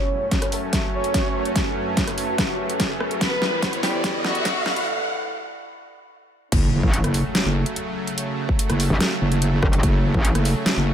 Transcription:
Already playing: supersaw synth F#2 F#3 A3 C#4, violin section C#4 C#5, ambient pad E4 F#4 A4, riser
0.23 ambient pad B4 A5
0.31 kick, snare, closed hi-hat
0.42 ambient pad E5, cross-stick, closed hi-hat
0.52 violin section A3 A4, open hi-hat
0.73 kick, snare, closed hi-hat
0.94 violin section C#4 C#5
1.04 closed hi-hat
1.14 kick, snare, closed hi-hat
1.45 closed hi-hat
1.56 kick, snare, closed hi-hat
1.97 kick, snare, closed hi-hat
2.07 cross-stick, closed hi-hat
2.18 open hi-hat
2.38 kick, cross-stick, snare, closed hi-hat
2.70 closed hi-hat
2.80 kick, snare, closed hi-hat
3.00 cross-stick
3.11 closed hi-hat
3.21 supersaw synth E2 E3 G3 B3, violin section B3 B4, ambient pad E4, kick, snare, closed hi-hat
3.42 snare
3.62 ambient pad A4, kick, snare, closed hi-hat
3.73 closed hi-hat
3.83 violin section G3 G4, snare, open hi-hat
3.95 ambient pad B5
4.04 ambient pad D5, kick, snare, closed hi-hat
4.25 violin section F#4, snare
4.35 closed hi-hat
4.45 kick, snare, closed hi-hat
4.66 snare
4.76 closed hi-hat
6.52 wobble bass F#1, supersaw synth C#3 F#3 A3, kick, closed hi-hat, crash, impact
6.83 wobble bass A1, kick
6.94 closed hi-hat
7.04 wobble bass F#1, cross-stick, closed hi-hat
7.14 open hi-hat
7.35 snare, closed hi-hat
7.45 wobble bass F#1
7.66 closed hi-hat
7.76 closed hi-hat
8.07 closed hi-hat
8.18 closed hi-hat
8.49 kick
8.59 closed hi-hat
8.70 wobble bass F#1, cross-stick, closed hi-hat
8.80 open hi-hat
8.90 wobble bass G1
9.00 cross-stick, snare, closed hi-hat
9.21 wobble bass F#1
9.32 closed hi-hat
9.42 closed hi-hat
9.63 wobble bass F#1, kick, cross-stick
9.73 closed hi-hat
9.83 wobble bass F#1, kick, closed hi-hat
10.14 wobble bass A1, kick
10.25 closed hi-hat
10.35 wobble bass F#1, cross-stick, closed hi-hat
10.45 open hi-hat
10.66 snare, closed hi-hat
10.76 wobble bass F#1

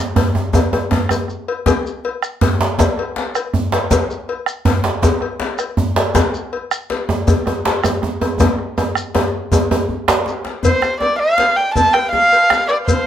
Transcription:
0.16 bombo rim, cowbell, djembe slap, djembe bass
0.35 djembe slap, djembe tone
0.53 bombo low, cowbell, djembe tone, djembe bass, shekere
0.72 cowbell, djembe slap, djembe tone
0.91 djembe slap, djembe bass
1.09 bombo rim, cowbell, djembe tone, shekere
1.28 bombo rim, shekere
1.48 cowbell
1.66 bombo low, cowbell, djembe slap, djembe tone, djembe bass, shekere
1.86 shekere
2.04 cowbell, djembe slap
2.23 bombo rim, shekere
2.41 cowbell, djembe slap, djembe bass
2.61 djembe slap
2.78 bombo low, cowbell, djembe slap, djembe tone, djembe bass, shekere
2.98 bombo rim, cowbell
3.16 djembe slap
3.35 bombo rim, cowbell, shekere
3.53 bombo rim, djembe bass
3.72 cowbell, djembe slap
3.91 bombo low, cowbell, djembe slap, djembe tone, djembe bass, shekere
4.11 shekere
4.28 cowbell, djembe slap
4.46 bombo rim, shekere
4.65 cowbell, djembe slap, djembe bass
4.84 bombo rim, djembe slap
5.02 bombo low, cowbell, djembe slap, djembe tone, djembe bass, shekere
5.21 bombo rim, cowbell
5.40 djembe slap
5.58 bombo rim, cowbell, shekere
5.77 bombo rim, djembe bass
5.96 cowbell, djembe slap
6.15 bombo low, cowbell, djembe slap, djembe tone, djembe bass, shekere
6.34 shekere
6.53 cowbell, djembe slap
6.71 bombo rim, shekere
6.90 cowbell, djembe slap
7.09 bombo rim, djembe tone
7.27 bombo low, cowbell, djembe tone, djembe bass, shekere
7.46 bombo rim, cowbell, djembe tone
7.65 djembe slap
7.84 bombo rim, cowbell, djembe tone, shekere
8.02 bombo rim, djembe tone
8.21 cowbell, djembe tone
8.40 bombo low, cowbell, djembe slap, djembe tone, djembe bass, shekere
8.58 bombo rim
8.78 cowbell, djembe tone, shekere
8.95 bombo rim, shekere
9.15 cowbell, djembe slap, djembe tone
9.52 bombo low, cowbell, djembe tone, djembe bass, shekere
9.71 cowbell, djembe tone
9.89 djembe bass
10.08 bombo rim, cowbell, djembe slap, djembe bass, shekere
10.26 djembe slap, shekere
10.45 bombo rim, djembe slap
10.63 erhu C5, bombo low, cowbell, djembe bass, shekere
10.82 bombo rim, djembe slap, shekere
11.01 erhu D5, bombo rim, cowbell, djembe slap, djembe tone
11.19 erhu F5
11.38 cowbell, djembe slap, shekere
11.56 erhu G5, djembe slap
11.75 erhu A5, bombo low, cowbell, djembe bass, shekere
11.93 erhu G5, bombo rim, cowbell, djembe slap
12.12 erhu F5, bombo rim, djembe slap, djembe tone
12.32 cowbell, djembe slap, shekere
12.50 bombo rim, djembe slap, shekere
12.68 erhu D5, bombo rim, cowbell
12.87 erhu C5, bombo low, cowbell, djembe bass, shekere

